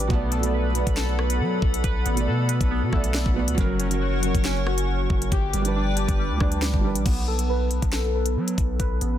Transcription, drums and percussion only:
0.10 kick loud
0.10 closed hi-hat medium
0.32 closed hi-hat medium
0.43 closed hi-hat medium
0.75 closed hi-hat medium
0.87 kick medium
0.87 closed hi-hat medium
0.97 snare loud
1.19 cross-stick loud
1.30 closed hi-hat medium
1.62 kick loud
1.74 closed hi-hat medium
1.84 kick loud
1.84 closed hi-hat medium
2.06 closed hi-hat medium
2.17 closed hi-hat medium
2.49 closed hi-hat medium
2.61 kick medium
2.61 closed hi-hat medium
2.93 kick loud
2.93 cross-stick medium
3.04 closed hi-hat medium
3.14 snare loud
3.26 kick medium
3.48 closed hi-hat medium
3.58 kick loud
3.58 closed hi-hat medium
3.80 closed hi-hat medium
3.91 closed hi-hat medium
4.23 closed hi-hat medium
4.35 kick loud
4.35 closed hi-hat medium
4.45 snare loud
4.67 cross-stick loud
4.78 closed hi-hat medium
5.10 kick loud
5.22 closed hi-hat medium
5.32 kick loud
5.32 closed hi-hat medium
5.53 closed hi-hat medium
5.65 closed hi-hat medium
5.97 closed hi-hat medium
6.08 kick medium
6.08 closed hi-hat medium
6.40 kick loud
6.40 cross-stick loud
6.52 closed hi-hat medium
6.62 snare loud
6.74 kick medium
6.95 closed hi-hat medium
7.06 kick loud
7.06 closed hi-hat medium
7.06 crash medium
7.39 closed hi-hat medium
7.71 closed hi-hat medium
7.82 kick loud
7.82 closed hi-hat medium
7.93 snare loud
8.26 closed hi-hat medium
8.48 closed hi-hat medium
8.58 kick loud
8.58 closed hi-hat medium
8.80 kick loud
8.80 closed hi-hat medium
9.01 closed hi-hat medium

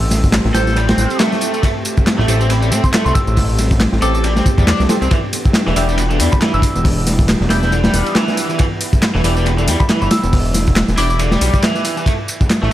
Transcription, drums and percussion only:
0.11 snare medium
0.11 ride medium
0.11 tambourine medium
0.24 kick medium
0.24 tambourine soft
0.32 snare loud
0.32 clap loud
0.32 ride medium
0.32 tambourine soft
0.45 snare medium
0.54 snare loud
0.54 ride medium
0.54 tambourine medium
0.67 snare soft
0.67 tambourine soft
0.76 ride medium
0.76 tambourine soft
0.89 snare loud
0.89 ride medium
0.89 tambourine soft
0.98 snare soft
0.98 tambourine medium
1.10 ride medium
1.10 tambourine soft
1.19 snare loud
1.19 clap loud
1.19 ride medium
1.19 tambourine soft
1.32 snare medium
1.32 tambourine soft
1.41 ride medium
1.41 tambourine medium
1.54 ride soft
1.54 tambourine soft
1.63 kick loud
1.63 ride medium
1.63 tambourine soft
1.85 ride medium
1.85 tambourine medium
1.97 kick loud
1.97 tambourine soft
2.07 snare loud
2.07 clap loud
2.07 ride medium
2.07 tambourine soft
2.19 snare soft
2.28 ride medium
2.28 tambourine medium
2.41 tambourine soft
2.50 ride medium
2.50 tambourine soft
2.62 tambourine soft
2.72 ride medium
2.72 tambourine medium
2.84 kick medium
2.84 tambourine soft
2.93 snare loud
2.93 clap loud
2.93 ride loud
2.93 tambourine soft
3.06 tambourine soft
3.15 kick loud
3.15 ride medium
3.15 tambourine medium
3.27 tambourine soft
3.37 kick loud
3.37 open hi-hat medium
3.37 tambourine soft
3.49 tambourine soft
3.58 snare soft
3.58 ride medium
3.58 tambourine medium
3.71 kick medium
3.71 tambourine soft
3.80 snare loud
3.80 clap loud
3.80 ride medium
3.80 tambourine soft
3.92 snare medium
4.02 ride medium
4.02 tambourine medium
4.15 tambourine soft
4.24 ride medium
4.24 tambourine soft
4.36 snare medium
4.36 tambourine soft
4.46 kick medium
4.46 ride medium
4.46 tambourine medium
4.58 kick loud
4.58 tambourine soft
4.67 snare loud
4.67 clap loud
4.67 ride medium
4.67 tambourine soft
4.80 snare medium
4.80 tambourine soft
4.89 snare loud
4.89 ride medium
4.89 tambourine medium
5.02 ride soft
5.02 tambourine soft
5.11 kick loud
5.11 ride loud
5.11 tambourine soft
5.33 open hi-hat medium
5.33 ride medium
5.33 tambourine medium
5.45 kick loud
5.45 tambourine soft
5.53 snare loud
5.53 clap loud
5.53 ride medium
5.53 tambourine soft
5.66 snare soft
5.76 open hi-hat medium
5.76 ride medium
5.76 tambourine medium
5.89 tambourine soft
5.98 ride medium
5.98 tambourine soft
6.11 tambourine soft
6.20 open hi-hat medium
6.20 ride medium
6.20 tambourine medium
6.32 kick loud
6.32 tambourine soft
6.41 snare loud
6.41 clap loud
6.41 ride medium
6.41 tambourine soft
6.54 tambourine soft
6.62 kick medium
6.62 open hi-hat medium
6.62 ride medium
6.62 tambourine medium
6.75 tambourine soft
6.85 kick loud
6.85 open hi-hat medium
6.85 tambourine soft
7.07 snare soft
7.07 open hi-hat medium
7.07 ride medium
7.07 tambourine medium
7.19 kick loud
7.19 tambourine soft
7.29 snare loud
7.29 clap loud
7.29 ride loud
7.29 tambourine soft
7.41 snare soft
7.49 snare loud
7.49 open hi-hat medium
7.49 ride medium
7.49 tambourine medium
7.63 snare soft
7.63 tambourine soft
7.72 ride medium
7.72 tambourine soft
7.84 snare loud
7.84 ride medium
7.84 tambourine soft
7.94 snare soft
7.94 open hi-hat medium
7.94 tambourine medium
8.06 ride medium
8.06 tambourine soft
8.15 snare loud
8.15 clap loud
8.15 ride medium
8.15 tambourine soft
8.28 snare medium
8.28 tambourine soft
8.37 open hi-hat medium
8.37 ride medium
8.37 tambourine medium
8.50 ride soft
8.50 tambourine soft
8.59 kick loud
8.59 ride medium
8.59 tambourine soft
8.81 open hi-hat medium
8.81 ride medium
8.81 tambourine medium
8.93 kick loud
8.93 tambourine soft
9.02 snare loud
9.02 clap loud
9.02 ride loud
9.02 tambourine soft
9.15 snare soft
9.24 open hi-hat medium
9.24 ride medium
9.24 tambourine medium
9.37 tambourine soft
9.46 ride medium
9.46 tambourine soft
9.58 tambourine soft
9.68 open hi-hat medium
9.68 ride medium
9.68 tambourine medium
9.80 kick medium
9.80 tambourine soft
9.89 snare loud
9.89 clap loud
9.89 ride medium
9.89 tambourine soft
10.02 tambourine soft
10.11 snare loud
10.11 open hi-hat medium
10.11 ride medium
10.11 tambourine medium
10.23 tambourine soft
10.33 kick loud
10.33 open hi-hat medium
10.33 tambourine soft
10.45 tambourine soft
10.54 snare soft
10.54 open hi-hat medium
10.54 ride medium
10.54 tambourine medium
10.67 kick medium
10.67 tambourine soft
10.76 snare loud
10.76 clap loud
10.76 ride loud
10.76 tambourine soft
10.88 snare medium
10.88 tambourine soft
10.98 open hi-hat medium
10.98 ride medium
10.98 tambourine medium
11.10 tambourine soft
11.19 ride medium
11.19 tambourine soft
11.31 snare medium
11.31 tambourine soft
11.41 open hi-hat medium
11.41 ride medium
11.41 tambourine medium
11.54 kick medium
11.54 tambourine soft
11.62 snare loud
11.62 clap loud
11.62 ride medium
11.62 tambourine soft
11.75 snare soft
11.75 tambourine soft
11.85 open hi-hat medium
11.85 ride medium
11.85 tambourine medium
11.97 tambourine soft
12.06 kick loud
12.06 ride medium
12.06 tambourine soft
12.28 ride medium
12.28 tambourine medium
12.41 kick medium
12.41 tambourine soft
12.49 snare loud
12.49 clap loud
12.49 ride medium
12.49 tambourine soft
12.62 snare soft

